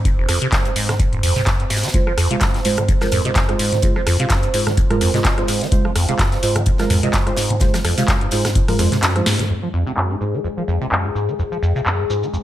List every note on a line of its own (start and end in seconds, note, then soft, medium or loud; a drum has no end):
0.00 9.51 C5 medium
0.05 0.09 F2 medium
0.05 kick loud
0.05 closed hi-hat medium
0.18 0.27 F1 medium
0.28 0.39 F2 loud
0.28 cross-stick medium
0.28 closed hi-hat medium
0.28 open hi-hat loud
0.42 0.47 C3 loud
0.42 closed hi-hat soft
0.52 0.67 F#2 medium
0.52 kick loud
0.52 snare loud
0.52 clap loud
0.52 closed hi-hat medium
0.65 0.71 G#2 medium
0.65 closed hi-hat soft
0.76 0.90 G#2 medium
0.76 closed hi-hat medium
0.76 open hi-hat loud
0.89 0.95 F3 medium
0.89 cross-stick medium
0.89 snare soft
0.89 closed hi-hat soft
0.89 mid tom medium
0.99 1.04 F2 medium
0.99 kick loud
0.99 closed hi-hat medium
1.13 1.21 F1 medium
1.13 closed hi-hat soft
1.13 mid tom medium
1.23 1.34 F2 loud
1.23 closed hi-hat medium
1.23 open hi-hat loud
1.36 1.42 C3 loud
1.36 snare medium
1.36 closed hi-hat soft
1.36 mid tom medium
1.46 1.61 F#2 medium
1.46 kick loud
1.46 snare loud
1.46 clap loud
1.46 closed hi-hat medium
1.60 1.66 G#2 medium
1.60 closed hi-hat soft
1.70 1.85 G#2 medium
1.70 snare medium
1.70 closed hi-hat medium
1.70 open hi-hat loud
1.77 snare medium
1.77 closed hi-hat medium
1.83 1.89 F3 medium
1.83 snare medium
1.83 closed hi-hat medium
1.83 closed hi-hat soft
1.88 snare medium
1.88 closed hi-hat medium
1.94 1.98 F2 medium
1.94 2.06 G#3 medium
1.94 2.06 F4 medium
1.94 2.06 C5 medium
1.94 kick loud
1.94 closed hi-hat medium
2.07 2.13 F3 medium
2.07 cross-stick medium
2.18 2.28 F2 loud
2.18 cross-stick medium
2.18 closed hi-hat medium
2.18 open hi-hat loud
2.31 2.36 C3 loud
2.31 2.41 G#3 medium
2.31 2.41 F4 medium
2.31 2.41 F5 medium
2.31 closed hi-hat medium
2.41 2.56 F#2 medium
2.41 kick loud
2.41 cross-stick soft
2.41 snare loud
2.41 clap loud
2.41 closed hi-hat medium
2.54 2.60 G#2 medium
2.54 snare soft
2.54 closed hi-hat soft
2.65 2.79 G#2 medium
2.65 2.77 G#3 medium
2.65 2.77 F4 medium
2.65 2.77 C5 loud
2.65 closed hi-hat medium
2.65 open hi-hat loud
2.77 2.84 F3 medium
2.77 cross-stick medium
2.77 closed hi-hat soft
2.77 mid tom medium
2.88 2.93 F2 medium
2.88 kick loud
2.88 closed hi-hat medium
3.01 3.07 F3 medium
3.01 3.22 G#3 loud
3.01 3.22 F4 medium
3.01 3.22 A#4 loud
3.01 cross-stick medium
3.01 snare medium
3.01 closed hi-hat soft
3.12 3.23 F2 loud
3.12 cross-stick soft
3.12 closed hi-hat medium
3.12 mid tom medium
3.12 open hi-hat loud
3.25 3.31 C3 loud
3.25 3.35 G#3 medium
3.25 3.35 F4 medium
3.25 3.35 D#5 medium
3.25 closed hi-hat soft
3.35 3.50 F#2 medium
3.35 kick loud
3.35 snare loud
3.35 clap loud
3.35 closed hi-hat medium
3.49 3.55 G#2 medium
3.49 3.66 G#3 medium
3.49 3.66 F4 medium
3.49 3.66 C5 loud
3.49 cross-stick medium
3.49 closed hi-hat soft
3.59 3.74 G#2 medium
3.59 closed hi-hat medium
3.59 open hi-hat loud
3.72 3.78 F3 medium
3.72 snare soft
3.72 closed hi-hat soft
3.72 mid tom medium
3.82 3.87 F2 medium
3.82 3.95 G#3 medium
3.82 3.95 F4 medium
3.82 3.95 C5 medium
3.82 kick loud
3.82 closed hi-hat medium
3.96 4.02 F3 medium
3.96 cross-stick medium
4.07 4.17 F2 loud
4.07 cross-stick medium
4.07 closed hi-hat medium
4.07 open hi-hat loud
4.20 4.25 C3 loud
4.20 4.30 G#3 medium
4.20 4.30 F4 medium
4.20 4.30 F5 medium
4.20 closed hi-hat medium
4.30 4.45 F#2 medium
4.30 kick loud
4.30 cross-stick soft
4.30 snare loud
4.30 clap loud
4.30 closed hi-hat loud
4.30 closed hi-hat medium
4.43 4.49 G#2 medium
4.43 closed hi-hat soft
4.54 4.68 G#2 medium
4.54 4.66 G#3 medium
4.54 4.66 F4 medium
4.54 4.66 C5 loud
4.54 closed hi-hat medium
4.54 open hi-hat loud
4.67 4.73 F3 medium
4.67 cross-stick medium
4.67 snare soft
4.67 closed hi-hat soft
4.67 mid tom medium
4.77 4.82 F2 medium
4.77 kick loud
4.77 closed hi-hat medium
4.90 4.96 F3 medium
4.90 5.11 G#3 loud
4.90 5.11 F4 medium
4.90 5.11 A#4 loud
4.90 cross-stick medium
4.90 closed hi-hat soft
4.90 mid tom medium
5.01 5.12 F2 loud
5.01 cross-stick soft
5.01 closed hi-hat medium
5.01 open hi-hat medium
5.14 5.20 C3 loud
5.14 5.24 G#3 medium
5.14 5.24 F4 medium
5.14 5.24 D#5 medium
5.14 snare medium
5.14 closed hi-hat soft
5.14 mid tom medium
5.25 5.39 F#2 medium
5.25 kick loud
5.25 snare loud
5.25 clap loud
5.25 closed hi-hat medium
5.38 5.44 G#2 medium
5.38 5.55 G#3 medium
5.38 5.55 F4 medium
5.38 5.55 C5 loud
5.38 cross-stick medium
5.38 closed hi-hat soft
5.48 5.63 G#2 medium
5.48 snare medium
5.48 closed hi-hat medium
5.48 open hi-hat loud
5.61 5.67 F3 medium
5.61 snare soft
5.61 closed hi-hat soft
5.72 5.76 F2 medium
5.72 5.84 G#3 medium
5.72 5.84 F4 medium
5.72 5.84 C5 medium
5.72 kick loud
5.72 closed hi-hat medium
5.85 5.91 F3 medium
5.85 cross-stick medium
5.96 6.06 F2 loud
5.96 cross-stick medium
5.96 closed hi-hat medium
5.96 open hi-hat loud
6.09 6.14 C3 loud
6.09 6.19 G#3 medium
6.09 6.19 F4 medium
6.09 6.19 F5 medium
6.09 closed hi-hat medium
6.19 6.34 F#2 medium
6.19 kick loud
6.19 cross-stick soft
6.19 snare loud
6.19 clap loud
6.19 closed hi-hat medium
6.32 6.38 G#2 medium
6.32 snare soft
6.32 closed hi-hat soft
6.43 6.57 G#2 medium
6.43 6.55 G#3 medium
6.43 6.55 F4 medium
6.43 6.55 C5 medium
6.43 closed hi-hat medium
6.43 open hi-hat loud
6.56 6.62 F3 medium
6.56 cross-stick medium
6.56 closed hi-hat soft
6.56 closed hi-hat medium
6.56 mid tom medium
6.66 6.71 F2 medium
6.66 kick loud
6.66 closed hi-hat medium
6.78 6.85 F3 medium
6.78 7.00 G#3 medium
6.78 7.00 F4 medium
6.78 7.00 A#4 loud
6.78 cross-stick medium
6.78 snare medium
6.78 closed hi-hat soft
6.90 7.01 F2 loud
6.90 cross-stick soft
6.90 closed hi-hat medium
6.90 mid tom medium
6.90 open hi-hat loud
7.03 7.09 C3 loud
7.03 7.13 G#3 medium
7.03 7.13 F4 medium
7.03 7.13 D#5 medium
7.03 closed hi-hat soft
7.13 7.28 F#2 medium
7.13 kick loud
7.13 snare loud
7.13 clap loud
7.13 closed hi-hat medium
7.27 7.33 G#2 medium
7.27 7.44 G#3 medium
7.27 7.44 F4 medium
7.27 7.44 C5 loud
7.27 cross-stick medium
7.27 closed hi-hat soft
7.37 7.52 G#2 medium
7.37 snare loud
7.37 closed hi-hat medium
7.37 open hi-hat loud
7.50 7.56 F3 medium
7.50 closed hi-hat medium
7.50 mid tom medium
7.60 7.65 F2 medium
7.60 7.73 G#3 medium
7.60 7.73 F4 medium
7.60 7.73 C5 medium
7.60 kick loud
7.60 snare soft
7.60 closed hi-hat medium
7.74 7.80 F3 medium
7.74 cross-stick medium
7.74 snare loud
7.74 closed hi-hat medium
7.74 closed hi-hat soft
7.85 7.95 F2 loud
7.85 cross-stick medium
7.85 open hi-hat loud
7.97 8.03 C3 loud
7.97 8.08 G#3 medium
7.97 8.08 F4 medium
7.97 8.08 F5 medium
7.97 snare soft
7.97 closed hi-hat medium
8.08 8.23 F#2 medium
8.08 kick loud
8.08 cross-stick soft
8.08 snare loud
8.08 clap loud
8.08 closed hi-hat medium
8.21 8.27 G#2 medium
8.21 closed hi-hat soft
8.31 8.46 G#2 medium
8.31 8.44 G#3 medium
8.31 8.44 F4 medium
8.31 8.44 C5 loud
8.31 snare medium
8.31 closed hi-hat medium
8.31 open hi-hat loud
8.45 8.51 F3 medium
8.45 cross-stick medium
8.45 snare loud
8.45 closed hi-hat medium
8.45 mid tom medium
8.55 8.60 F2 medium
8.55 kick loud
8.55 closed hi-hat medium
8.68 8.74 F3 medium
8.68 8.77 G#3 loud
8.68 8.77 F4 medium
8.68 8.77 A#4 loud
8.68 cross-stick medium
8.68 mid tom medium
8.68 open hi-hat medium
8.79 8.90 F2 loud
8.79 8.98 G#3 medium
8.79 8.98 F4 medium
8.79 8.98 C5 loud
8.79 cross-stick soft
8.79 closed hi-hat medium
8.79 open hi-hat medium
8.92 8.98 C3 loud
8.92 snare medium
8.92 closed hi-hat medium
8.92 mid tom medium
9.03 9.17 F#2 medium
9.03 snare loud
9.03 clap loud
9.03 closed hi-hat medium
9.16 9.22 G#2 medium
9.16 9.26 G#3 medium
9.16 9.26 F4 medium
9.16 9.26 C5 loud
9.16 cross-stick medium
9.16 closed hi-hat soft
9.16 high tom medium
9.26 9.41 G#2 medium
9.26 snare medium
9.26 closed hi-hat medium
9.26 open hi-hat loud
9.39 9.45 F3 medium
9.39 snare soft
9.39 closed hi-hat medium
9.39 mid tom medium
9.50 9.54 F2 medium
9.50 9.62 G#3 medium
9.50 9.62 F4 medium
9.50 12.43 G#4 medium
9.50 9.62 C5 medium
9.50 shaker soft
9.63 9.69 F3 medium
9.73 9.84 F2 loud
9.73 shaker medium
9.87 9.92 C3 loud
9.87 9.97 G#3 medium
9.87 9.97 F4 medium
9.87 9.97 F5 medium
9.87 shaker soft
9.97 10.12 F#2 medium
9.97 clap loud
9.97 shaker soft
10.10 10.16 G#2 medium
10.21 10.35 G#2 medium
10.21 10.33 G#3 medium
10.21 10.33 F4 medium
10.21 10.33 C5 medium
10.21 shaker medium
10.34 10.40 F3 medium
10.34 shaker soft
10.44 10.49 F2 medium
10.44 shaker soft
10.57 10.63 F3 medium
10.57 10.78 G#3 medium
10.57 10.78 F4 medium
10.57 10.78 A#4 loud
10.57 shaker soft
10.68 10.79 F2 loud
10.68 shaker medium
10.81 10.87 C3 loud
10.81 10.91 G#3 medium
10.81 10.91 F4 medium
10.81 10.91 D#5 medium
10.81 shaker soft
10.92 11.06 F#2 medium
10.92 clap loud
10.92 shaker soft
11.05 11.10 G#2 medium
11.05 11.22 G#3 medium
11.05 11.22 F4 medium
11.05 11.22 C5 medium
11.15 11.30 G#2 medium
11.15 shaker medium
11.28 11.34 F3 medium
11.28 shaker soft
11.39 11.43 F2 medium
11.39 11.51 G#3 medium
11.39 11.51 F4 medium
11.39 11.51 C5 medium
11.39 shaker soft
11.52 11.58 F3 medium
11.52 shaker soft
11.62 11.73 F2 loud
11.62 shaker medium
11.76 11.81 C3 loud
11.76 11.86 G#3 medium
11.76 11.86 F4 medium
11.76 11.86 F5 medium
11.76 shaker soft
11.86 12.01 F#2 medium
11.86 clap loud
11.86 shaker soft
11.99 12.05 G#2 medium
12.10 12.24 G#2 medium
12.10 12.22 G#3 medium
12.10 12.22 F4 medium
12.10 12.22 C5 medium
12.10 shaker medium
12.23 12.29 F3 medium
12.23 shaker soft
12.33 12.38 F2 medium
12.33 shaker soft